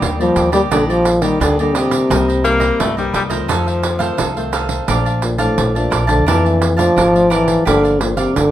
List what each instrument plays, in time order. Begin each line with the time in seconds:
Already playing: nylon-string guitar G3 A#3 D4, cavaquinho G4 D5 D#5
0.01 upright bass D#2, nylon-string guitar A#2, pandeiro
0.19 trombone F3, nylon-string guitar G3 A#3 D4, cavaquinho G4 D5 D#5, pandeiro
0.36 upright bass D#2, cavaquinho D4 G4 D5 D#5, pandeiro
0.52 nylon-string guitar G3 A#3 D4, trombone G3, cavaquinho G4 D5 D#5, pandeiro
0.71 upright bass A#1, trombone D3, nylon-string guitar D#3 G3 A#3 D4, cavaquinho D4 G4 D5 D#5, pandeiro
0.89 trombone F3, cavaquinho G4 D5 D#5, pandeiro
1.05 muted cavaquinho stroke, pandeiro
1.21 trombone D#3, nylon-string guitar G3 A#3 D4, cavaquinho G4 D5 D#5, pandeiro
1.40 upright bass D2, nylon-string guitar A#2, trombone D3, cavaquinho D4 G4 D5 D#5, pandeiro
1.59 trombone D3, nylon-string guitar G3 A#3 D4, cavaquinho G4 D5 D#5, pandeiro
1.75 trombone C3, cavaquinho G4 D5 D#5, pandeiro
1.91 pandeiro
2.10 upright bass C2, nylon-string guitar C3 G3 A#3 D#4, cavaquinho D#4 A#4 C5 D#5, pandeiro
2.28 cavaquinho A#4 C5 D#5, pandeiro
2.44 nylon-string guitar G3 A#3 D#4, tenor saxophone A#3, muted cavaquinho stroke, pandeiro
2.60 cavaquinho A#4 C5 D#5, pandeiro
2.79 upright bass C2, nylon-string guitar G2, tenor saxophone A3, pandeiro
2.97 nylon-string guitar G3 A#3 D#4, tenor saxophone G3, cavaquinho A#4 C5 D#5, pandeiro
3.13 upright bass C2, tenor saxophone G3, cavaquinho D#4 A#4 C5 D#5, pandeiro
3.29 nylon-string guitar D#3 A3 C4, tenor saxophone F3, cavaquinho A#4 C5 D#5, pandeiro
3.48 nylon-string guitar F2, upright bass F2, cavaquinho D#4 A4 C5 F5, pandeiro
3.66 cavaquinho A4 C5 F5, pandeiro
3.83 muted cavaquinho stroke, pandeiro
3.99 nylon-string guitar D#3 A3 C4, cavaquinho A4 C5 F5, pandeiro
4.17 upright bass C2, nylon-string guitar C3, cavaquinho D#4 A4 C5 F5, pandeiro
4.36 nylon-string guitar D#3 A3 C4, cavaquinho A4 C5 F5, pandeiro
4.52 cavaquinho D#4 A4 C5 F5, pandeiro
4.69 pandeiro
4.87 upright bass A#1, nylon-string guitar A#2 F3 A3 D4, cavaquinho A#4 D5 F5 A5, pandeiro
5.05 cavaquinho D5 F5 A5, pandeiro
5.22 trombone A#2, muted cavaquinho stroke, pandeiro
5.38 trombone A2, nylon-string guitar F3 A3 D4, cavaquinho D5 F5 A5, pandeiro
5.57 upright bass A#1, nylon-string guitar F2, pandeiro
5.75 trombone A#2, nylon-string guitar F3 A3 D4, cavaquinho D5 F5 A5, pandeiro
5.90 upright bass A#1, cavaquinho A#4 D5 F5 A5, pandeiro
6.07 trombone D3, nylon-string guitar F3 A3 D4, cavaquinho D5 F5 A5, pandeiro
6.26 upright bass F2, nylon-string guitar A#2 A3 D4, trombone E3, cavaquinho A#4 D5 F5 A5, pandeiro
6.44 cavaquinho D5 F5 A5, pandeiro
6.61 muted cavaquinho stroke, pandeiro
6.77 nylon-string guitar F3 A3 D4, trombone F3, cavaquinho D5 F5 A5, pandeiro
6.96 upright bass G#1, nylon-string guitar F2, cavaquinho A#4 D5 F5 A5, pandeiro
7.14 nylon-string guitar F3 A3 D4, cavaquinho D5 F5 A5, pandeiro
7.30 trombone E3, cavaquinho A#4 D5 F5 A5, pandeiro
7.48 pandeiro
7.65 upright bass G1, nylon-string guitar G2 F3 A#3 D4, trombone D3, cavaquinho G4 A#4 D5 F5, pandeiro
7.83 cavaquinho A#4 D5 F5, pandeiro
8.00 trombone A#2, nylon-string guitar F3 A#3 D4, muted cavaquinho stroke, pandeiro
8.16 trombone C3, cavaquinho A#4 D5 F5, pandeiro
8.36 upright bass G1, trombone D3, nylon-string guitar D3, pandeiro